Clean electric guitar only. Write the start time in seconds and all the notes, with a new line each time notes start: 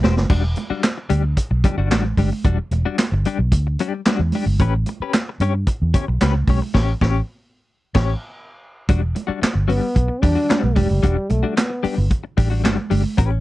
0.03 C4 G4 C5
0.17 muted clean electric guitar stroke
0.30 G3 D4 F#4
0.44 muted clean electric guitar stroke
0.57 muted clean electric guitar stroke
0.70 G3 D4 F#4
0.84 muted clean electric guitar stroke
0.98 muted clean electric guitar stroke
1.10 G3 D4 G4
1.24 muted clean electric guitar stroke
1.37 muted clean electric guitar stroke
1.51 muted clean electric guitar stroke
1.64 G3 D4 G4
1.78 G3 D4 F#4
1.91 G3 D4 F#4
2.05 muted clean electric guitar stroke
2.18 G3 D4 G4
2.32 muted clean electric guitar stroke
2.45 G3 D4 F#4
2.58 muted clean electric guitar stroke
2.73 muted clean electric guitar stroke
2.85 G3 D4 F#4
3.14 muted clean electric guitar stroke
3.26 G3 D4 G4
3.39 muted clean electric guitar stroke
3.53 muted clean electric guitar stroke
3.67 muted clean electric guitar stroke
3.80 G3 D4 G4
3.94 muted clean electric guitar stroke
4.08 G3 D4 F#4
4.35 G3 D4 G4
4.47 muted clean electric guitar stroke
4.61 C#4 G4 B4
4.75 muted clean electric guitar stroke
4.89 muted clean electric guitar stroke
5.02 C#4 G4 B4
5.16 muted clean electric guitar stroke
5.29 muted clean electric guitar stroke
5.41 C#4 G4 C#5
5.55 muted clean electric guitar stroke
5.68 muted clean electric guitar stroke
5.94 C#4 G4 C#5
6.08 muted clean electric guitar stroke
6.21 C#4 G4 B4
6.35 muted clean electric guitar stroke
6.49 C#4 G4 C#5
6.62 muted clean electric guitar stroke
6.74 C#4 G4 C#5
7.02 C#4 G4 C#5
7.95 C#4 G4 C#5
8.89 G3 D4 F#4
9.02 muted clean electric guitar stroke
9.15 muted clean electric guitar stroke
9.27 G3 D4 F#4
9.42 muted clean electric guitar stroke
9.54 muted clean electric guitar stroke
9.68 G3 D4 G4
9.82 muted clean electric guitar stroke
9.95 muted clean electric guitar stroke
10.08 muted clean electric guitar stroke
10.22 G3 D4 G4
10.35 G3 D4 F#4
10.49 G3 D4 F#4
10.62 muted clean electric guitar stroke
10.76 G3 D4 G4
10.90 muted clean electric guitar stroke
11.03 G3 D4 F#4
11.17 muted clean electric guitar stroke
11.31 muted clean electric guitar stroke
11.43 G3 D4 F#4
11.56 muted clean electric guitar stroke
11.70 muted clean electric guitar stroke
11.83 G3 D4 G4
11.96 muted clean electric guitar stroke
12.11 muted clean electric guitar stroke
12.24 muted clean electric guitar stroke
12.37 G3 D4 G4
12.50 G3 D4 F#4
12.64 G3 D4 F#4
12.78 muted clean electric guitar stroke
12.90 G3 D4 G4
13.04 muted clean electric guitar stroke
13.17 C#4 G4 B4
13.31 muted clean electric guitar stroke